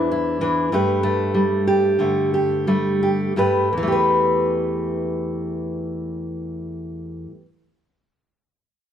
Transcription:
Already playing: E2 E3 D4 E4 C5
0.12 E4
0.41 E3 D4
0.72 G2 A3 G4 B4
1.03 A3
1.34 G3
1.67 G4
1.99 D3 A3
2.34 G4
2.67 G3 A3
3.03 G4
3.36 G2 A3 G4 B4
3.73 E2
3.77 E3
3.83 A3
3.88 G4
3.92 B4

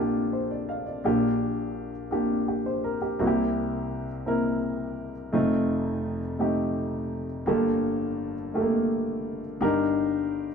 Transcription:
Already playing: A#1 A#2 A#3 D4 F4 G4 A4
0.33 C5
0.51 D5
0.69 F5
0.86 D5
1.04 A#1 A#2 A#3 D4 F4 G4
2.11 A#3 D4 F4 G4
2.48 G4
2.66 C5
2.84 A#4
3.02 G4
3.19 C2 C3 A#3 C4 E4 F#4
3.27 G4
4.26 A#3 C4 E4 A#4
5.33 F1 F2 A3 C4 D#4 F4
6.39 A3 C4 D#4 G4
7.46 G1 G2 A#3 F4 G4 A4
8.54 A3 F4 G4 A4
8.61 A#3
9.61 G1 G2 D4 D#4 G4 A#4

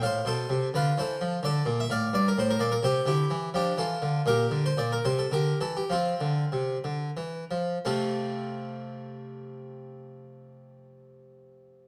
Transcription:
0.02 A2 C5 F5
0.25 B2 A4 C5
0.50 C3
0.74 D3 F4 B4
0.98 E3 A4 C5
1.21 F3
1.43 D3 A4 D5
1.66 A#2
1.80 E5
1.90 A2 D5 F5
2.13 G2 D5
2.28 A#4
2.38 A2 C5
2.50 A#4
2.60 A#2 D5
2.72 A#4
2.83 C3 G4 C5
3.06 D3 E4 G4
3.31 E3
3.54 F3 D4 G4
3.78 E3 F4 A4
4.02 D3
4.26 A#2 G4 A#4
4.51 D3
4.66 C5
4.77 A#2 D5
4.92 A#4
5.05 C3 C5
5.19 A4
5.31 D3 G4 A#4
5.61 E3 A4
5.77 G4
5.90 F3 C4 F4
6.21 D3
6.52 C3
6.84 D3
7.17 E3
7.51 F3
7.85 F2 C3 A3 C4 F4 A4

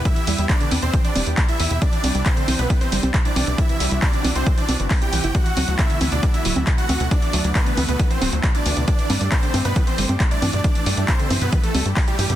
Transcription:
Already playing: B3 E4 G4
0.05 E3 E4 E5, kick, closed hi-hat
0.16 E3, closed hi-hat
0.27 E2 G3, open hi-hat
0.38 E2 G3, closed hi-hat
0.49 D4 D5, kick, clap, closed hi-hat
0.61 D3, closed hi-hat
0.71 E2 E3, open hi-hat, high conga
0.82 E2 B2 C4 C5, closed hi-hat
0.93 E3, kick, closed hi-hat
1.05 E3 D4 D5, closed hi-hat
1.16 E1 G3, open hi-hat, high conga
1.27 E2 G3, closed hi-hat
1.37 B2, kick, clap, closed hi-hat
1.49 E4 E5, closed hi-hat
1.60 E2 E3, open hi-hat
1.71 E2 B2, closed hi-hat
1.82 C3 E3 C4 D4 E4 D5, kick, closed hi-hat
1.93 E3, closed hi-hat
2.04 C2 G3, open hi-hat, high conga
2.15 C2 G3, closed hi-hat
2.26 C4 C5, kick, clap, closed hi-hat
2.37 D3, closed hi-hat
2.48 C2 E3, open hi-hat, high conga
2.59 C2 B2 B3 B4, closed hi-hat
2.70 E3, kick, closed hi-hat
2.81 E3 C4 C5, closed hi-hat
2.92 G1 G3, open hi-hat
3.03 C2 G3, closed hi-hat, high conga
3.14 B2, kick, clap, closed hi-hat
3.25 D4 E4 D5, closed hi-hat
3.36 C2 E3, open hi-hat, high conga
3.47 C2 B2, closed hi-hat
3.58 E3 E4 F#4 E5, kick, closed hi-hat
3.69 E3, closed hi-hat
3.80 C2 G3, open hi-hat
3.91 C2 G3, closed hi-hat
4.02 B2 D4 D5, kick, clap, closed hi-hat
4.13 D3, closed hi-hat
4.24 C2 E3, open hi-hat, high conga
4.36 C2 B2 C4 C5, closed hi-hat
4.46 E3, kick, closed hi-hat
4.58 E3 D4 D5, closed hi-hat
4.69 C2 B2, open hi-hat, high conga
4.80 G1 E3, closed hi-hat
4.91 B3, kick, clap, open hi-hat
5.02 E3 G4 G5, closed hi-hat
5.13 C2 E3, open hi-hat
5.24 G1 E4, closed hi-hat
5.35 D3 E3 A3 B3 F#4 F#5, kick, closed hi-hat
5.46 E3, closed hi-hat
5.57 D2 F#3, open hi-hat, high conga
5.68 D2 F#3, closed hi-hat
5.79 B2 E4 E5, kick, clap, closed hi-hat
5.90 D3, closed hi-hat
6.01 D2 E3, open hi-hat, high conga
6.12 D2 B2 D4 D5, closed hi-hat
6.23 E3, kick, closed hi-hat
6.34 E3 E4 E5, closed hi-hat
6.45 D1 F#3, open hi-hat
6.56 D2 F#3, high conga
6.67 B2, kick, clap, closed hi-hat
6.78 E4 F#4 F#5, closed hi-hat
6.89 D2 E3, open hi-hat, high conga
7.00 D2 B2, closed hi-hat
7.11 E3 D4 D5, kick, closed hi-hat
7.22 E3, closed hi-hat
7.33 D2 F#3, open hi-hat
7.44 D2 F#3, closed hi-hat
7.55 B2 B3 B4, kick, clap, closed hi-hat
7.66 D3, closed hi-hat
7.77 D2 E3, open hi-hat, high conga
7.88 D2 B2 B3 B4, closed hi-hat
7.99 E3, kick, closed hi-hat
8.11 E3 C4 C5, closed hi-hat
8.22 D1 F#3, open hi-hat, high conga
8.33 D2 F#3, closed hi-hat
8.44 B2, kick, clap, closed hi-hat
8.55 D4 E4 D5, closed hi-hat
8.66 D2 E3, open hi-hat
8.77 D2 B2, closed hi-hat
8.88 E3 A3 D4 G4 D5, kick, closed hi-hat
8.99 E3, closed hi-hat
9.10 G2 G3, open hi-hat, high conga
9.21 G2 G3, closed hi-hat
9.32 B2 C4 C5, kick, clap, closed hi-hat
9.43 D3, closed hi-hat
9.54 G2 E3, open hi-hat, high conga
9.65 G2 B2 B3 B4, closed hi-hat
9.76 E3, kick, closed hi-hat
9.87 E3 C4 C5, closed hi-hat
9.98 G1 G3, open hi-hat
10.09 G2 G3, closed hi-hat, high conga
10.20 B2, kick, clap, closed hi-hat
10.31 D4 E4 D5, closed hi-hat
10.42 G2 E3, open hi-hat, high conga
10.53 G2 B2, closed hi-hat
10.64 E3 E4, kick, closed hi-hat
10.75 E3, closed hi-hat
10.86 G2 G3, open hi-hat
10.97 G2 G3, closed hi-hat
11.08 B2 C4 C5, kick, clap, closed hi-hat
11.19 D3, closed hi-hat
11.30 G2 E3, open hi-hat, high conga
11.41 G2 B2 B3 B4, closed hi-hat
11.52 E3, kick, closed hi-hat
11.63 E3 A3 A4, closed hi-hat
11.74 D2 G3, open hi-hat, high conga
11.85 G2 G3, closed hi-hat
11.97 B2, kick, clap, open hi-hat
12.08 G3 E4 G4, closed hi-hat
12.18 G2 E3, open hi-hat
12.30 G2 B2, closed hi-hat

